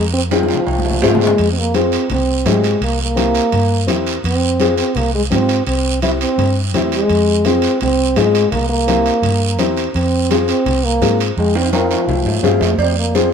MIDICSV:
0, 0, Header, 1, 5, 480
1, 0, Start_track
1, 0, Key_signature, -4, "minor"
1, 0, Tempo, 356718
1, 1866, Time_signature, 4, 2, 24, 8
1, 17942, End_track
2, 0, Start_track
2, 0, Title_t, "Upright piano"
2, 0, Program_c, 0, 0
2, 428, Note_on_c, 0, 60, 73
2, 433, Note_on_c, 0, 65, 63
2, 435, Note_on_c, 0, 68, 79
2, 762, Note_off_c, 0, 60, 0
2, 764, Note_off_c, 0, 65, 0
2, 765, Note_off_c, 0, 68, 0
2, 1381, Note_on_c, 0, 65, 75
2, 1384, Note_on_c, 0, 60, 84
2, 1390, Note_on_c, 0, 68, 85
2, 1720, Note_off_c, 0, 65, 0
2, 1721, Note_off_c, 0, 60, 0
2, 1725, Note_off_c, 0, 68, 0
2, 2344, Note_on_c, 0, 60, 72
2, 2348, Note_on_c, 0, 65, 64
2, 2357, Note_on_c, 0, 68, 77
2, 2683, Note_off_c, 0, 60, 0
2, 2685, Note_off_c, 0, 65, 0
2, 2690, Note_off_c, 0, 68, 0
2, 3305, Note_on_c, 0, 60, 70
2, 3314, Note_on_c, 0, 65, 58
2, 3316, Note_on_c, 0, 67, 78
2, 3645, Note_off_c, 0, 60, 0
2, 3649, Note_off_c, 0, 65, 0
2, 3650, Note_off_c, 0, 67, 0
2, 4248, Note_on_c, 0, 60, 72
2, 4251, Note_on_c, 0, 64, 62
2, 4256, Note_on_c, 0, 67, 84
2, 4597, Note_off_c, 0, 60, 0
2, 4598, Note_off_c, 0, 64, 0
2, 4601, Note_off_c, 0, 67, 0
2, 5206, Note_on_c, 0, 60, 76
2, 5213, Note_on_c, 0, 64, 71
2, 5223, Note_on_c, 0, 67, 91
2, 5556, Note_off_c, 0, 60, 0
2, 5560, Note_off_c, 0, 64, 0
2, 5565, Note_off_c, 0, 67, 0
2, 6189, Note_on_c, 0, 60, 77
2, 6189, Note_on_c, 0, 65, 65
2, 6199, Note_on_c, 0, 68, 79
2, 6528, Note_off_c, 0, 60, 0
2, 6528, Note_off_c, 0, 65, 0
2, 6533, Note_off_c, 0, 68, 0
2, 7136, Note_on_c, 0, 60, 67
2, 7138, Note_on_c, 0, 65, 64
2, 7149, Note_on_c, 0, 67, 76
2, 7482, Note_off_c, 0, 60, 0
2, 7483, Note_off_c, 0, 65, 0
2, 7488, Note_off_c, 0, 67, 0
2, 8113, Note_on_c, 0, 60, 73
2, 8119, Note_on_c, 0, 64, 66
2, 8122, Note_on_c, 0, 67, 77
2, 8450, Note_off_c, 0, 60, 0
2, 8453, Note_off_c, 0, 64, 0
2, 8454, Note_off_c, 0, 67, 0
2, 9077, Note_on_c, 0, 60, 81
2, 9080, Note_on_c, 0, 64, 77
2, 9083, Note_on_c, 0, 67, 90
2, 9411, Note_off_c, 0, 60, 0
2, 9413, Note_off_c, 0, 64, 0
2, 9414, Note_off_c, 0, 67, 0
2, 10020, Note_on_c, 0, 60, 67
2, 10027, Note_on_c, 0, 65, 65
2, 10039, Note_on_c, 0, 68, 79
2, 10362, Note_off_c, 0, 60, 0
2, 10366, Note_off_c, 0, 65, 0
2, 10372, Note_off_c, 0, 68, 0
2, 10976, Note_on_c, 0, 60, 68
2, 10980, Note_on_c, 0, 65, 67
2, 10986, Note_on_c, 0, 68, 77
2, 11320, Note_off_c, 0, 60, 0
2, 11321, Note_off_c, 0, 65, 0
2, 11324, Note_off_c, 0, 68, 0
2, 11937, Note_on_c, 0, 60, 73
2, 11942, Note_on_c, 0, 64, 62
2, 11950, Note_on_c, 0, 67, 85
2, 12279, Note_off_c, 0, 60, 0
2, 12281, Note_off_c, 0, 64, 0
2, 12285, Note_off_c, 0, 67, 0
2, 12898, Note_on_c, 0, 60, 83
2, 12905, Note_on_c, 0, 64, 72
2, 12906, Note_on_c, 0, 67, 88
2, 13238, Note_off_c, 0, 60, 0
2, 13242, Note_off_c, 0, 64, 0
2, 13243, Note_off_c, 0, 67, 0
2, 13857, Note_on_c, 0, 60, 69
2, 13867, Note_on_c, 0, 65, 67
2, 13871, Note_on_c, 0, 68, 83
2, 14197, Note_off_c, 0, 60, 0
2, 14202, Note_off_c, 0, 65, 0
2, 14204, Note_off_c, 0, 68, 0
2, 14817, Note_on_c, 0, 60, 72
2, 14825, Note_on_c, 0, 65, 64
2, 14828, Note_on_c, 0, 68, 74
2, 15156, Note_off_c, 0, 60, 0
2, 15160, Note_off_c, 0, 65, 0
2, 15162, Note_off_c, 0, 68, 0
2, 15783, Note_on_c, 0, 65, 67
2, 15784, Note_on_c, 0, 60, 70
2, 15794, Note_on_c, 0, 70, 80
2, 16118, Note_off_c, 0, 65, 0
2, 16119, Note_off_c, 0, 60, 0
2, 16124, Note_off_c, 0, 70, 0
2, 16725, Note_on_c, 0, 60, 82
2, 16729, Note_on_c, 0, 65, 79
2, 16738, Note_on_c, 0, 68, 92
2, 17069, Note_off_c, 0, 60, 0
2, 17070, Note_off_c, 0, 65, 0
2, 17075, Note_off_c, 0, 68, 0
2, 17688, Note_on_c, 0, 60, 77
2, 17692, Note_on_c, 0, 65, 68
2, 17694, Note_on_c, 0, 68, 82
2, 17942, Note_off_c, 0, 60, 0
2, 17942, Note_off_c, 0, 65, 0
2, 17942, Note_off_c, 0, 68, 0
2, 17942, End_track
3, 0, Start_track
3, 0, Title_t, "French horn"
3, 0, Program_c, 1, 60
3, 180, Note_on_c, 1, 60, 85
3, 288, Note_off_c, 1, 60, 0
3, 430, Note_on_c, 1, 53, 71
3, 1576, Note_off_c, 1, 53, 0
3, 1638, Note_on_c, 1, 56, 86
3, 2024, Note_off_c, 1, 56, 0
3, 2046, Note_on_c, 1, 60, 59
3, 2137, Note_on_c, 1, 58, 80
3, 2157, Note_off_c, 1, 60, 0
3, 2362, Note_on_c, 1, 60, 78
3, 2382, Note_off_c, 1, 58, 0
3, 2837, Note_off_c, 1, 60, 0
3, 2856, Note_on_c, 1, 60, 91
3, 3327, Note_on_c, 1, 56, 79
3, 3347, Note_off_c, 1, 60, 0
3, 3800, Note_off_c, 1, 56, 0
3, 3811, Note_on_c, 1, 58, 78
3, 4026, Note_off_c, 1, 58, 0
3, 4062, Note_on_c, 1, 58, 96
3, 5435, Note_off_c, 1, 58, 0
3, 5726, Note_on_c, 1, 60, 88
3, 6391, Note_off_c, 1, 60, 0
3, 6429, Note_on_c, 1, 60, 87
3, 6680, Note_on_c, 1, 58, 90
3, 6700, Note_off_c, 1, 60, 0
3, 6918, Note_off_c, 1, 58, 0
3, 6925, Note_on_c, 1, 56, 86
3, 7031, Note_off_c, 1, 56, 0
3, 7154, Note_on_c, 1, 60, 97
3, 7601, Note_off_c, 1, 60, 0
3, 7632, Note_on_c, 1, 60, 87
3, 8080, Note_off_c, 1, 60, 0
3, 8107, Note_on_c, 1, 64, 95
3, 8216, Note_off_c, 1, 64, 0
3, 8345, Note_on_c, 1, 60, 96
3, 8904, Note_off_c, 1, 60, 0
3, 9329, Note_on_c, 1, 56, 93
3, 10043, Note_on_c, 1, 60, 89
3, 10063, Note_off_c, 1, 56, 0
3, 10514, Note_off_c, 1, 60, 0
3, 10522, Note_on_c, 1, 60, 97
3, 11001, Note_on_c, 1, 56, 85
3, 11021, Note_off_c, 1, 60, 0
3, 11447, Note_off_c, 1, 56, 0
3, 11455, Note_on_c, 1, 58, 83
3, 11685, Note_off_c, 1, 58, 0
3, 11697, Note_on_c, 1, 58, 98
3, 13087, Note_off_c, 1, 58, 0
3, 13372, Note_on_c, 1, 60, 84
3, 14047, Note_off_c, 1, 60, 0
3, 14115, Note_on_c, 1, 60, 92
3, 14591, Note_on_c, 1, 58, 88
3, 14611, Note_off_c, 1, 60, 0
3, 15067, Note_off_c, 1, 58, 0
3, 15304, Note_on_c, 1, 56, 82
3, 15561, Note_on_c, 1, 60, 82
3, 15581, Note_off_c, 1, 56, 0
3, 15773, Note_off_c, 1, 60, 0
3, 15781, Note_on_c, 1, 53, 69
3, 16926, Note_off_c, 1, 53, 0
3, 17244, Note_on_c, 1, 60, 74
3, 17456, Note_off_c, 1, 60, 0
3, 17475, Note_on_c, 1, 58, 75
3, 17732, Note_on_c, 1, 60, 80
3, 17752, Note_off_c, 1, 58, 0
3, 17932, Note_off_c, 1, 60, 0
3, 17942, End_track
4, 0, Start_track
4, 0, Title_t, "Fingered electric bass"
4, 0, Program_c, 2, 33
4, 0, Note_on_c, 2, 41, 104
4, 709, Note_off_c, 2, 41, 0
4, 905, Note_on_c, 2, 36, 89
4, 1394, Note_on_c, 2, 44, 82
4, 1414, Note_off_c, 2, 36, 0
4, 1776, Note_off_c, 2, 44, 0
4, 1871, Note_on_c, 2, 41, 100
4, 2640, Note_off_c, 2, 41, 0
4, 2823, Note_on_c, 2, 36, 86
4, 3301, Note_on_c, 2, 44, 87
4, 3321, Note_off_c, 2, 36, 0
4, 3690, Note_off_c, 2, 44, 0
4, 3785, Note_on_c, 2, 36, 100
4, 4557, Note_off_c, 2, 36, 0
4, 4745, Note_on_c, 2, 43, 86
4, 5233, Note_off_c, 2, 43, 0
4, 5233, Note_on_c, 2, 40, 85
4, 5618, Note_off_c, 2, 40, 0
4, 5708, Note_on_c, 2, 41, 97
4, 6479, Note_off_c, 2, 41, 0
4, 6668, Note_on_c, 2, 36, 91
4, 7153, Note_on_c, 2, 44, 90
4, 7174, Note_off_c, 2, 36, 0
4, 7538, Note_off_c, 2, 44, 0
4, 7628, Note_on_c, 2, 36, 97
4, 8398, Note_off_c, 2, 36, 0
4, 8584, Note_on_c, 2, 43, 84
4, 9074, Note_off_c, 2, 43, 0
4, 9074, Note_on_c, 2, 40, 82
4, 9458, Note_off_c, 2, 40, 0
4, 9551, Note_on_c, 2, 41, 108
4, 10319, Note_off_c, 2, 41, 0
4, 10521, Note_on_c, 2, 36, 88
4, 10989, Note_on_c, 2, 44, 89
4, 11009, Note_off_c, 2, 36, 0
4, 11373, Note_off_c, 2, 44, 0
4, 11465, Note_on_c, 2, 36, 104
4, 12234, Note_off_c, 2, 36, 0
4, 12412, Note_on_c, 2, 43, 91
4, 12892, Note_off_c, 2, 43, 0
4, 12892, Note_on_c, 2, 40, 90
4, 13282, Note_off_c, 2, 40, 0
4, 13387, Note_on_c, 2, 41, 109
4, 14153, Note_off_c, 2, 41, 0
4, 14341, Note_on_c, 2, 36, 91
4, 14821, Note_on_c, 2, 44, 89
4, 14841, Note_off_c, 2, 36, 0
4, 15205, Note_off_c, 2, 44, 0
4, 15301, Note_on_c, 2, 41, 100
4, 16068, Note_off_c, 2, 41, 0
4, 16250, Note_on_c, 2, 36, 91
4, 16478, Note_off_c, 2, 36, 0
4, 16486, Note_on_c, 2, 44, 87
4, 16709, Note_off_c, 2, 44, 0
4, 16726, Note_on_c, 2, 43, 76
4, 16948, Note_off_c, 2, 43, 0
4, 16968, Note_on_c, 2, 41, 82
4, 17189, Note_off_c, 2, 41, 0
4, 17198, Note_on_c, 2, 41, 91
4, 17942, Note_off_c, 2, 41, 0
4, 17942, End_track
5, 0, Start_track
5, 0, Title_t, "Drums"
5, 421, Note_on_c, 9, 65, 85
5, 421, Note_on_c, 9, 73, 61
5, 422, Note_on_c, 9, 63, 76
5, 555, Note_off_c, 9, 73, 0
5, 556, Note_off_c, 9, 63, 0
5, 556, Note_off_c, 9, 65, 0
5, 583, Note_on_c, 9, 63, 78
5, 653, Note_on_c, 9, 65, 74
5, 674, Note_on_c, 9, 73, 65
5, 717, Note_off_c, 9, 63, 0
5, 737, Note_on_c, 9, 64, 71
5, 787, Note_off_c, 9, 65, 0
5, 808, Note_off_c, 9, 73, 0
5, 872, Note_off_c, 9, 64, 0
5, 897, Note_on_c, 9, 65, 84
5, 919, Note_on_c, 9, 74, 64
5, 1032, Note_off_c, 9, 65, 0
5, 1054, Note_off_c, 9, 74, 0
5, 1058, Note_on_c, 9, 64, 73
5, 1136, Note_on_c, 9, 66, 72
5, 1192, Note_off_c, 9, 64, 0
5, 1221, Note_on_c, 9, 64, 74
5, 1270, Note_off_c, 9, 66, 0
5, 1356, Note_off_c, 9, 64, 0
5, 1373, Note_on_c, 9, 66, 96
5, 1396, Note_on_c, 9, 73, 69
5, 1507, Note_off_c, 9, 66, 0
5, 1530, Note_off_c, 9, 73, 0
5, 1547, Note_on_c, 9, 64, 84
5, 1618, Note_on_c, 9, 66, 77
5, 1634, Note_on_c, 9, 73, 66
5, 1682, Note_off_c, 9, 64, 0
5, 1709, Note_on_c, 9, 64, 80
5, 1753, Note_off_c, 9, 66, 0
5, 1768, Note_off_c, 9, 73, 0
5, 1843, Note_off_c, 9, 64, 0
5, 1861, Note_on_c, 9, 65, 67
5, 1865, Note_on_c, 9, 63, 33
5, 1873, Note_on_c, 9, 74, 69
5, 1996, Note_off_c, 9, 65, 0
5, 1999, Note_off_c, 9, 63, 0
5, 2007, Note_off_c, 9, 74, 0
5, 2344, Note_on_c, 9, 73, 65
5, 2349, Note_on_c, 9, 63, 74
5, 2349, Note_on_c, 9, 65, 63
5, 2478, Note_off_c, 9, 73, 0
5, 2483, Note_off_c, 9, 65, 0
5, 2484, Note_off_c, 9, 63, 0
5, 2584, Note_on_c, 9, 73, 64
5, 2597, Note_on_c, 9, 65, 67
5, 2719, Note_off_c, 9, 73, 0
5, 2731, Note_off_c, 9, 65, 0
5, 2822, Note_on_c, 9, 65, 64
5, 2822, Note_on_c, 9, 74, 67
5, 2843, Note_on_c, 9, 63, 28
5, 2843, Note_on_c, 9, 64, 75
5, 2957, Note_off_c, 9, 65, 0
5, 2957, Note_off_c, 9, 74, 0
5, 2977, Note_off_c, 9, 63, 0
5, 2977, Note_off_c, 9, 64, 0
5, 3306, Note_on_c, 9, 73, 73
5, 3309, Note_on_c, 9, 65, 61
5, 3309, Note_on_c, 9, 66, 68
5, 3315, Note_on_c, 9, 63, 84
5, 3441, Note_off_c, 9, 73, 0
5, 3443, Note_off_c, 9, 65, 0
5, 3443, Note_off_c, 9, 66, 0
5, 3450, Note_off_c, 9, 63, 0
5, 3547, Note_on_c, 9, 73, 69
5, 3556, Note_on_c, 9, 65, 67
5, 3682, Note_off_c, 9, 73, 0
5, 3690, Note_off_c, 9, 65, 0
5, 3792, Note_on_c, 9, 65, 67
5, 3793, Note_on_c, 9, 63, 30
5, 3793, Note_on_c, 9, 74, 69
5, 3926, Note_off_c, 9, 65, 0
5, 3927, Note_off_c, 9, 63, 0
5, 3928, Note_off_c, 9, 74, 0
5, 4267, Note_on_c, 9, 73, 62
5, 4268, Note_on_c, 9, 65, 66
5, 4273, Note_on_c, 9, 63, 74
5, 4401, Note_off_c, 9, 73, 0
5, 4403, Note_off_c, 9, 65, 0
5, 4408, Note_off_c, 9, 63, 0
5, 4503, Note_on_c, 9, 73, 71
5, 4510, Note_on_c, 9, 65, 63
5, 4638, Note_off_c, 9, 73, 0
5, 4645, Note_off_c, 9, 65, 0
5, 4742, Note_on_c, 9, 65, 64
5, 4749, Note_on_c, 9, 74, 67
5, 4753, Note_on_c, 9, 63, 30
5, 4753, Note_on_c, 9, 64, 69
5, 4876, Note_off_c, 9, 65, 0
5, 4883, Note_off_c, 9, 74, 0
5, 4888, Note_off_c, 9, 63, 0
5, 4888, Note_off_c, 9, 64, 0
5, 5222, Note_on_c, 9, 63, 77
5, 5226, Note_on_c, 9, 65, 67
5, 5229, Note_on_c, 9, 73, 70
5, 5357, Note_off_c, 9, 63, 0
5, 5360, Note_off_c, 9, 65, 0
5, 5364, Note_off_c, 9, 73, 0
5, 5470, Note_on_c, 9, 73, 67
5, 5476, Note_on_c, 9, 65, 62
5, 5605, Note_off_c, 9, 73, 0
5, 5610, Note_off_c, 9, 65, 0
5, 5696, Note_on_c, 9, 63, 34
5, 5707, Note_on_c, 9, 74, 73
5, 5721, Note_on_c, 9, 65, 67
5, 5831, Note_off_c, 9, 63, 0
5, 5841, Note_off_c, 9, 74, 0
5, 5856, Note_off_c, 9, 65, 0
5, 6185, Note_on_c, 9, 63, 77
5, 6185, Note_on_c, 9, 73, 62
5, 6204, Note_on_c, 9, 65, 65
5, 6319, Note_off_c, 9, 63, 0
5, 6320, Note_off_c, 9, 73, 0
5, 6339, Note_off_c, 9, 65, 0
5, 6425, Note_on_c, 9, 73, 69
5, 6431, Note_on_c, 9, 65, 68
5, 6560, Note_off_c, 9, 73, 0
5, 6566, Note_off_c, 9, 65, 0
5, 6657, Note_on_c, 9, 74, 68
5, 6673, Note_on_c, 9, 63, 29
5, 6673, Note_on_c, 9, 64, 73
5, 6683, Note_on_c, 9, 65, 65
5, 6792, Note_off_c, 9, 74, 0
5, 6807, Note_off_c, 9, 63, 0
5, 6807, Note_off_c, 9, 64, 0
5, 6818, Note_off_c, 9, 65, 0
5, 7145, Note_on_c, 9, 73, 70
5, 7153, Note_on_c, 9, 63, 84
5, 7155, Note_on_c, 9, 65, 68
5, 7279, Note_off_c, 9, 73, 0
5, 7288, Note_off_c, 9, 63, 0
5, 7290, Note_off_c, 9, 65, 0
5, 7385, Note_on_c, 9, 73, 63
5, 7390, Note_on_c, 9, 65, 64
5, 7520, Note_off_c, 9, 73, 0
5, 7524, Note_off_c, 9, 65, 0
5, 7624, Note_on_c, 9, 74, 73
5, 7631, Note_on_c, 9, 65, 63
5, 7635, Note_on_c, 9, 63, 33
5, 7758, Note_off_c, 9, 74, 0
5, 7765, Note_off_c, 9, 65, 0
5, 7770, Note_off_c, 9, 63, 0
5, 8105, Note_on_c, 9, 65, 69
5, 8108, Note_on_c, 9, 63, 72
5, 8116, Note_on_c, 9, 73, 63
5, 8239, Note_off_c, 9, 65, 0
5, 8243, Note_off_c, 9, 63, 0
5, 8250, Note_off_c, 9, 73, 0
5, 8355, Note_on_c, 9, 65, 64
5, 8360, Note_on_c, 9, 73, 71
5, 8490, Note_off_c, 9, 65, 0
5, 8494, Note_off_c, 9, 73, 0
5, 8592, Note_on_c, 9, 63, 28
5, 8592, Note_on_c, 9, 64, 73
5, 8596, Note_on_c, 9, 65, 66
5, 8598, Note_on_c, 9, 74, 66
5, 8727, Note_off_c, 9, 63, 0
5, 8727, Note_off_c, 9, 64, 0
5, 8730, Note_off_c, 9, 65, 0
5, 8733, Note_off_c, 9, 74, 0
5, 9073, Note_on_c, 9, 65, 67
5, 9073, Note_on_c, 9, 66, 66
5, 9075, Note_on_c, 9, 63, 78
5, 9075, Note_on_c, 9, 64, 67
5, 9082, Note_on_c, 9, 73, 74
5, 9207, Note_off_c, 9, 65, 0
5, 9207, Note_off_c, 9, 66, 0
5, 9209, Note_off_c, 9, 63, 0
5, 9209, Note_off_c, 9, 64, 0
5, 9216, Note_off_c, 9, 73, 0
5, 9312, Note_on_c, 9, 65, 65
5, 9322, Note_on_c, 9, 73, 68
5, 9447, Note_off_c, 9, 65, 0
5, 9456, Note_off_c, 9, 73, 0
5, 9547, Note_on_c, 9, 65, 64
5, 9561, Note_on_c, 9, 63, 33
5, 9561, Note_on_c, 9, 74, 66
5, 9681, Note_off_c, 9, 65, 0
5, 9696, Note_off_c, 9, 63, 0
5, 9696, Note_off_c, 9, 74, 0
5, 10022, Note_on_c, 9, 65, 68
5, 10036, Note_on_c, 9, 63, 76
5, 10037, Note_on_c, 9, 73, 65
5, 10157, Note_off_c, 9, 65, 0
5, 10171, Note_off_c, 9, 63, 0
5, 10171, Note_off_c, 9, 73, 0
5, 10253, Note_on_c, 9, 65, 65
5, 10273, Note_on_c, 9, 73, 62
5, 10388, Note_off_c, 9, 65, 0
5, 10408, Note_off_c, 9, 73, 0
5, 10506, Note_on_c, 9, 65, 63
5, 10506, Note_on_c, 9, 74, 67
5, 10529, Note_on_c, 9, 63, 32
5, 10529, Note_on_c, 9, 64, 76
5, 10640, Note_off_c, 9, 74, 0
5, 10641, Note_off_c, 9, 65, 0
5, 10663, Note_off_c, 9, 63, 0
5, 10663, Note_off_c, 9, 64, 0
5, 10984, Note_on_c, 9, 65, 68
5, 10984, Note_on_c, 9, 66, 70
5, 10994, Note_on_c, 9, 73, 70
5, 10995, Note_on_c, 9, 63, 82
5, 11119, Note_off_c, 9, 65, 0
5, 11119, Note_off_c, 9, 66, 0
5, 11129, Note_off_c, 9, 73, 0
5, 11130, Note_off_c, 9, 63, 0
5, 11234, Note_on_c, 9, 65, 69
5, 11234, Note_on_c, 9, 73, 64
5, 11368, Note_off_c, 9, 65, 0
5, 11368, Note_off_c, 9, 73, 0
5, 11467, Note_on_c, 9, 65, 64
5, 11472, Note_on_c, 9, 74, 71
5, 11485, Note_on_c, 9, 63, 32
5, 11485, Note_on_c, 9, 64, 65
5, 11602, Note_off_c, 9, 65, 0
5, 11606, Note_off_c, 9, 74, 0
5, 11619, Note_off_c, 9, 63, 0
5, 11619, Note_off_c, 9, 64, 0
5, 11950, Note_on_c, 9, 65, 67
5, 11950, Note_on_c, 9, 73, 59
5, 11964, Note_on_c, 9, 63, 76
5, 12084, Note_off_c, 9, 65, 0
5, 12084, Note_off_c, 9, 73, 0
5, 12098, Note_off_c, 9, 63, 0
5, 12188, Note_on_c, 9, 65, 63
5, 12197, Note_on_c, 9, 73, 68
5, 12322, Note_off_c, 9, 65, 0
5, 12331, Note_off_c, 9, 73, 0
5, 12425, Note_on_c, 9, 65, 64
5, 12427, Note_on_c, 9, 74, 71
5, 12439, Note_on_c, 9, 63, 32
5, 12439, Note_on_c, 9, 64, 70
5, 12559, Note_off_c, 9, 65, 0
5, 12562, Note_off_c, 9, 74, 0
5, 12574, Note_off_c, 9, 63, 0
5, 12574, Note_off_c, 9, 64, 0
5, 12901, Note_on_c, 9, 73, 70
5, 12907, Note_on_c, 9, 65, 68
5, 12910, Note_on_c, 9, 63, 79
5, 13035, Note_off_c, 9, 73, 0
5, 13042, Note_off_c, 9, 65, 0
5, 13045, Note_off_c, 9, 63, 0
5, 13142, Note_on_c, 9, 73, 64
5, 13154, Note_on_c, 9, 65, 67
5, 13276, Note_off_c, 9, 73, 0
5, 13288, Note_off_c, 9, 65, 0
5, 13380, Note_on_c, 9, 74, 70
5, 13390, Note_on_c, 9, 63, 34
5, 13400, Note_on_c, 9, 65, 63
5, 13515, Note_off_c, 9, 74, 0
5, 13525, Note_off_c, 9, 63, 0
5, 13534, Note_off_c, 9, 65, 0
5, 13869, Note_on_c, 9, 73, 63
5, 13870, Note_on_c, 9, 65, 66
5, 13874, Note_on_c, 9, 63, 74
5, 14004, Note_off_c, 9, 65, 0
5, 14004, Note_off_c, 9, 73, 0
5, 14009, Note_off_c, 9, 63, 0
5, 14102, Note_on_c, 9, 73, 66
5, 14112, Note_on_c, 9, 65, 68
5, 14237, Note_off_c, 9, 73, 0
5, 14247, Note_off_c, 9, 65, 0
5, 14347, Note_on_c, 9, 63, 32
5, 14347, Note_on_c, 9, 64, 73
5, 14349, Note_on_c, 9, 65, 64
5, 14349, Note_on_c, 9, 74, 70
5, 14481, Note_off_c, 9, 63, 0
5, 14481, Note_off_c, 9, 64, 0
5, 14484, Note_off_c, 9, 65, 0
5, 14484, Note_off_c, 9, 74, 0
5, 14825, Note_on_c, 9, 63, 79
5, 14833, Note_on_c, 9, 65, 65
5, 14833, Note_on_c, 9, 73, 68
5, 14959, Note_off_c, 9, 63, 0
5, 14967, Note_off_c, 9, 73, 0
5, 14968, Note_off_c, 9, 65, 0
5, 15077, Note_on_c, 9, 73, 64
5, 15081, Note_on_c, 9, 65, 69
5, 15211, Note_off_c, 9, 73, 0
5, 15216, Note_off_c, 9, 65, 0
5, 15309, Note_on_c, 9, 74, 71
5, 15313, Note_on_c, 9, 63, 32
5, 15319, Note_on_c, 9, 65, 71
5, 15443, Note_off_c, 9, 74, 0
5, 15448, Note_off_c, 9, 63, 0
5, 15453, Note_off_c, 9, 65, 0
5, 15547, Note_on_c, 9, 65, 89
5, 15682, Note_off_c, 9, 65, 0
5, 15782, Note_on_c, 9, 73, 62
5, 15783, Note_on_c, 9, 63, 77
5, 15787, Note_on_c, 9, 65, 99
5, 15917, Note_off_c, 9, 63, 0
5, 15917, Note_off_c, 9, 73, 0
5, 15922, Note_off_c, 9, 65, 0
5, 16023, Note_on_c, 9, 73, 68
5, 16029, Note_on_c, 9, 65, 90
5, 16158, Note_off_c, 9, 73, 0
5, 16164, Note_off_c, 9, 65, 0
5, 16264, Note_on_c, 9, 66, 71
5, 16264, Note_on_c, 9, 74, 66
5, 16273, Note_on_c, 9, 63, 32
5, 16273, Note_on_c, 9, 64, 76
5, 16398, Note_off_c, 9, 74, 0
5, 16399, Note_off_c, 9, 66, 0
5, 16408, Note_off_c, 9, 63, 0
5, 16408, Note_off_c, 9, 64, 0
5, 16498, Note_on_c, 9, 66, 79
5, 16632, Note_off_c, 9, 66, 0
5, 16733, Note_on_c, 9, 66, 84
5, 16741, Note_on_c, 9, 63, 80
5, 16741, Note_on_c, 9, 64, 69
5, 16741, Note_on_c, 9, 73, 70
5, 16868, Note_off_c, 9, 66, 0
5, 16875, Note_off_c, 9, 63, 0
5, 16875, Note_off_c, 9, 64, 0
5, 16876, Note_off_c, 9, 73, 0
5, 16966, Note_on_c, 9, 66, 72
5, 16989, Note_on_c, 9, 73, 69
5, 17100, Note_off_c, 9, 66, 0
5, 17123, Note_off_c, 9, 73, 0
5, 17205, Note_on_c, 9, 56, 100
5, 17221, Note_on_c, 9, 63, 34
5, 17223, Note_on_c, 9, 74, 68
5, 17340, Note_off_c, 9, 56, 0
5, 17355, Note_off_c, 9, 63, 0
5, 17357, Note_off_c, 9, 74, 0
5, 17694, Note_on_c, 9, 56, 64
5, 17695, Note_on_c, 9, 73, 66
5, 17698, Note_on_c, 9, 63, 79
5, 17829, Note_off_c, 9, 56, 0
5, 17830, Note_off_c, 9, 73, 0
5, 17833, Note_off_c, 9, 63, 0
5, 17942, End_track
0, 0, End_of_file